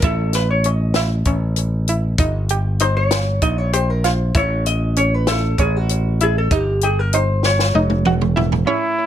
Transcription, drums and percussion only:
0.02 kick, closed hi-hat
0.33 snare, closed hi-hat
0.64 closed hi-hat
0.94 snare, closed hi-hat
1.25 kick, closed hi-hat
1.56 closed hi-hat
1.88 closed hi-hat
2.18 kick, closed hi-hat
2.49 closed hi-hat
2.80 closed hi-hat
3.11 snare, closed hi-hat
3.42 kick, closed hi-hat
3.73 closed hi-hat
4.04 snare, closed hi-hat
4.35 kick, closed hi-hat
4.66 closed hi-hat
4.96 closed hi-hat
5.27 snare, closed hi-hat
5.58 kick, closed hi-hat
5.89 closed hi-hat
6.20 closed hi-hat
6.51 kick, closed hi-hat
6.81 closed hi-hat
7.13 closed hi-hat
7.43 snare
7.59 snare
7.75 high tom
7.90 high tom
8.05 mid tom
8.21 mid tom
8.37 floor tom
8.52 floor tom

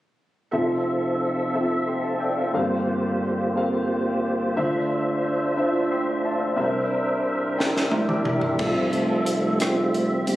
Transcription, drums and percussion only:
7.60 snare
7.77 snare
7.91 high tom
8.09 mid tom
8.25 mid tom
8.41 floor tom
8.59 kick, crash
8.93 closed hi-hat
9.26 closed hi-hat
9.60 cross-stick, closed hi-hat
9.94 closed hi-hat
10.27 closed hi-hat

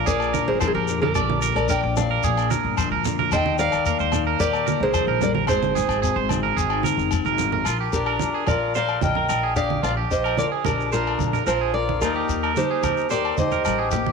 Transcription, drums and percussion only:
0.07 shekere
0.20 low agogo, shekere
0.34 high conga, shekere
0.60 low agogo, shekere
0.88 shekere
1.03 high conga
1.15 low conga, low agogo, shekere
1.30 high conga
1.42 shekere
1.56 low agogo, shekere
1.69 shekere
1.97 low conga, low agogo, shekere
2.24 shekere
2.37 low agogo, shekere
2.51 high conga, shekere
2.77 low agogo, shekere
3.05 low conga, shekere
3.19 high conga
3.32 low conga, low agogo, shekere
3.46 high conga
3.58 shekere
3.72 low agogo, shekere
3.86 shekere
3.99 shekere
4.12 low conga, low agogo, shekere
4.40 shekere
4.53 low agogo, shekere
4.67 high conga, shekere
4.94 low agogo, shekere
5.21 low conga, shekere
5.35 high conga
5.47 low conga, low agogo, shekere
5.62 high conga, shekere
5.76 low conga, shekere
5.89 low agogo, shekere
6.04 shekere
6.29 high conga, low conga, low agogo, shekere
6.58 shekere
6.70 low agogo
6.83 high conga, shekere
6.99 shekere
7.11 low agogo, shekere
7.25 high conga, shekere
7.38 low conga, shekere
7.52 low conga
7.65 low agogo, shekere
7.93 shekere
8.06 low agogo
8.19 high conga, shekere
8.47 low conga, low agogo, shekere
8.75 shekere
8.89 low agogo
9.01 high conga, shekere
9.15 low conga
9.29 low agogo, shekere
9.56 shekere
9.70 high conga
9.83 low agogo, shekere
10.11 shekere
10.26 low agogo
10.37 high conga, shekere
10.65 high conga, low conga, low agogo, shekere
10.80 shekere
10.92 shekere
11.07 low agogo
11.19 high conga, shekere
11.33 low conga, shekere
11.47 low agogo, shekere
11.89 high conga
12.01 low agogo, shekere
12.29 shekere
12.44 low agogo
12.56 high conga, shekere
12.83 high conga, low conga, low agogo, shekere
12.97 shekere
13.10 shekere
13.25 low agogo
13.38 high conga, shekere
13.51 low conga, shekere
13.65 low agogo, shekere
13.91 low conga, shekere
14.06 high conga

